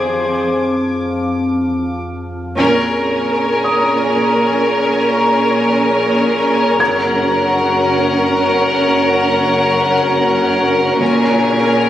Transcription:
Already playing: F2 G#4 C5 C6 D6 G#6
2.57 A#1 A#2 C#4 G#4 A#4 C#5 G#5 A#5, taiko
3.64 D#6
4.17 taiko
6.78 F#1 F#2 C#4 F#4 A#4 C#5 F#5 A#5 G#6
11.00 A#1 A#2 C#4 G#4 A#4 C#5 G#5, taiko

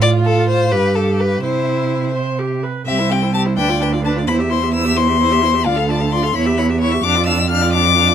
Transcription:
Already playing: A2 F5
0.01 F4 D5
0.26 A4
0.49 C5
0.71 G2 G4 B4
0.96 A4
1.20 B4
1.42 C3 E4 C5 E5
2.14 C5
2.39 G4
2.63 B4
2.86 C2 C4 G4 E5
2.99 E4 C5
3.10 C4 G4 G5
3.22 E4 C5
3.34 C4 G4 A5
3.46 E4 C5
3.57 D2 D4 B4 G5
3.68 F4 D5
3.80 D4 B4 G5
3.92 F4 D5
4.04 D4 B4 A5
4.15 F4 D5
4.27 E2 E4 C5 B5
4.39 G4 E5
4.50 E4 C5 C6
4.62 G4 E5
4.73 E4 C5 E6
4.85 G4 E5
4.96 E4 C5 C6
5.08 G4 E5
5.20 E4 C5
5.31 G4 E5
5.42 E4 C5
5.53 G4 E5
5.65 D2 F4 D5 F5
5.76 A4 F5
5.89 F4 D5 A5
6.00 A4 F5
6.12 F4 D5 C6
6.23 A4 F5
6.34 E2 E4 C#5 B5
6.46 G4 E5
6.57 E4 C#5 B5
6.69 G4 E5
6.81 E4 C#5 C#6
6.92 G4 E5
7.03 F2 D4 F5 D6
7.15 F4 D5
7.26 D4 F5 E6
7.38 F4 D5
7.49 D4 F5 F6
7.61 F4 D5
7.73 D4 F5 D6
7.86 F4 D5
7.96 D4 F5
8.08 F4 D5

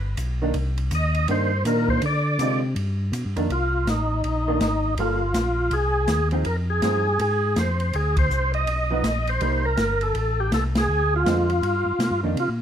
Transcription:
Already playing: G1
0.17 B1, hi-hat pedal, ride
0.42 D#3 A#3 D4
0.54 C2, ride
0.78 ride
0.91 D#2 D#5, hi-hat pedal, ride
1.15 ride
1.28 G2 D#3 A#3 D4 C5, ride
1.65 A#2 D#3 A#3 D4 A#4, hi-hat pedal, ride
1.88 C5, kick
2.02 D3, ride
2.06 D5
2.38 C3 D3 G#3 C4 F4, hi-hat pedal, ride
2.75 G2, ride
3.12 B2, hi-hat pedal, ride
3.25 G2
3.36 F2 D#3 A#3 D4, ride
3.49 C2 F4, ride
3.86 A1 D#4, snare, hi-hat pedal, ride
4.24 A#1, ride
4.48 D#3 A#3 D4
4.60 G#1, snare, hi-hat pedal, ride
4.97 G1 G3 A#3 F4 A4, ride
5.34 A#1, snare, hi-hat pedal, ride
5.71 C2 G#4, ride
6.08 D#2, snare, hi-hat pedal, ride
6.31 F3 C4 D#4 G#4, ride
6.45 F2 A#4, ride
6.70 G#4
6.82 G2 F3 C4 D#4 G#4, snare, hi-hat pedal, ride
7.19 G#2 G#4, ride
7.56 F2 C5, snare, hi-hat pedal, ride
7.80 ride
7.93 D2 G#4, ride
8.17 C5, kick, ride
8.30 C2, hi-hat pedal
8.54 D#5, ride
8.66 B1, ride
8.91 F3 B3 D#4
9.03 A#1, snare, hi-hat pedal, ride
9.27 C5, ride
9.40 C2 G3 A#3 D#4, ride
9.65 A#4
9.77 G1, snare, hi-hat pedal, ride
10.01 A4, ride
10.15 A1, ride
10.40 G4
10.51 C2 A4, snare, hi-hat pedal, ride
10.75 G#4, snare, ride
10.89 D2
11.16 F4
11.25 F2 D3 G#3 C4 F4, snare, hi-hat pedal, ride
11.50 ride
11.62 G2, ride
11.86 G2
11.99 B2, snare, hi-hat pedal, ride
12.11 G2
12.23 F2 D#3 A#3 D4
12.36 C3, ride
12.40 F4
12.49 A#2

